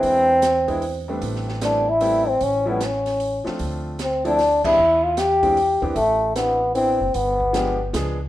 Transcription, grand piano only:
X:1
M:3/4
L:1/8
Q:"Swing" 1/4=152
K:Am
V:1 name="Grand piano"
[_A,CDEB]2 z [^G,B,CDE] z [=G,=A,B,CD]- | [G,A,B,CD]2 [G,A,B,CE] z [G,A,B,CE] z | z [F,G,A,^CE] z3 [F,A,=CDF]- | [F,A,CDF]2 z [F,A,CDE] z [E,_A,CDG] |
z3 [E,^G,^B,D=G] z [E,=B,^B,DG] | z2 [E,B,CDG] z [E,B,CDE] z | z2 [F,_A,B,DG] z [F,A,B,D_A] z |]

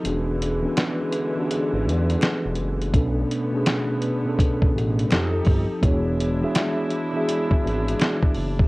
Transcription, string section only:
X:1
M:4/4
L:1/8
Q:"Swing 16ths" 1/4=83
K:Emix
V:1 name="String section"
[D,E,G,]8 | [D,A,B,]6 [=F,_E=GA]2 | [G,DE]8 |]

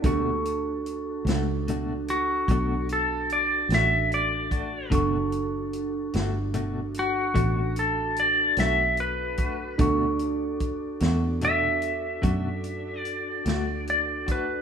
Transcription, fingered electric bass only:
X:1
M:12/8
L:1/8
Q:3/8=49
K:Bm
V:1 name="Fingered electric bass" clef=bass
D,,3 C,,3 B,,,3 A,,,3 | F,,,3 G,,,3 A,,,3 B,,,3 | D,,3 E,,3 F,,3 D,,3 |]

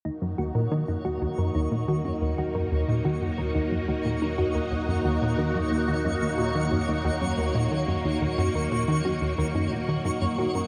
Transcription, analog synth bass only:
X:1
M:4/4
L:1/16
Q:1/4=90
K:Ebm
V:1 name="Analog synth bass" clef=bass
E,, G,, E,, B,, E, G,, E,, E,, G,, E,, B,, E, G,, E,, E,, G,, | E,, B,, E, G,, E,, E,, G,, E,, B,, E, G,, E,, E,, G,, E,, B,, | E, G,, E,, E,, G,, E,, B,, E, G,, E,, E,, G,, E,, B,, E, G,, | E,, E,, G,, E,, B,, E, G,, E,, E,, G,, B,, E, G,, G,, B,, G,, |]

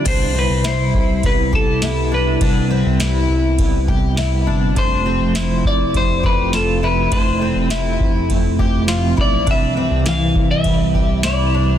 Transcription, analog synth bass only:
X:1
M:4/4
L:1/16
Q:1/4=102
K:C
V:1 name="Analog synth bass" clef=bass
C,,3 C,,3 C,,2 C,,8 | C,,3 C,,3 C,,8 G,,,2 | F,,,3 F,,,3 F,,,2 F,,,8 | F,,,3 F,,,3 F,,,8 B,,,2 |
C,,3 C,,3 C,,2 C,,8 |]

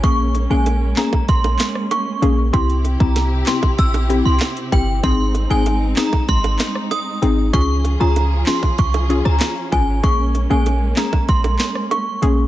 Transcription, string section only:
X:1
M:4/4
L:1/8
Q:1/4=96
K:Bbdor
V:1 name="String section"
[A,B,D]8 | [C,C=EG]8 | [A,E]8 | [F,DFA]8 |
[A,B,]8 |]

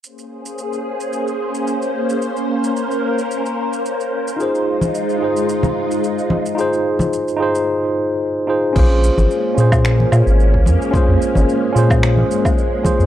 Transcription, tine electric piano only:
X:1
M:4/4
L:1/8
Q:"Swing 16ths" 1/4=110
K:Bbm
V:1 name="Tine electric piano"
z8 | z8 | [EFAc]3 [EFAc]4- [EFAc] | [EFAc]3 [EFAc]4 [EFAc] |
[DFAc]3 [DFAc]4- [DFAc] | [DFAc]3 [DFAc]4 [DFAc] |]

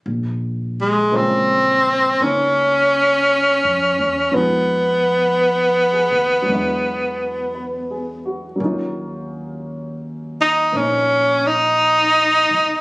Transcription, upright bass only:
X:1
M:4/4
L:1/8
Q:"Swing" 1/4=56
K:Bbm
V:1 name="Upright bass" clef=bass
B,,,4 D,,2- (3D,, F,, =E,, | F,,3 E,, =E,,4 | E,,4 B,,,3 _C,, |]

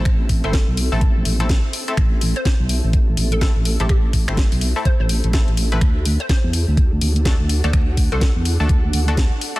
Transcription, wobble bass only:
X:1
M:4/4
L:1/16
Q:"Swing 16ths" 1/4=125
K:Ador
V:1 name="Wobble bass" clef=bass
A,,,3 G,,,2 B,,,2 A,,,3 A,,,3 z3 | A,,,3 z2 B,,,2 A,,,3 A,,,3 A,,,2 A,,, | A,,,3 G,,,2 B,,,2 z2 A,,,2 A,,,2 A,,,3 | D,,3 z2 E,,2 D,,3 D,,3 D,,2 D,, |
D,,3 C,,2 E,,2 D,,3 D,,3 z3 |]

